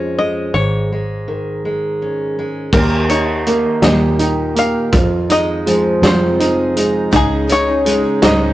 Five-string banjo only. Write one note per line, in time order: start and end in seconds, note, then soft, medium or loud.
0.00 0.18 C#5 medium
0.19 0.54 D#5 medium
0.54 1.96 C#5 medium
2.74 3.11 A#4 medium
3.10 3.79 C#5 medium
3.83 4.52 D#5 medium
4.59 5.27 F5 medium
5.32 6.06 D#5 medium
6.06 6.83 C5 medium
7.16 7.52 G#4 medium
7.52 8.20 C#5 medium
8.25 8.53 D#5 medium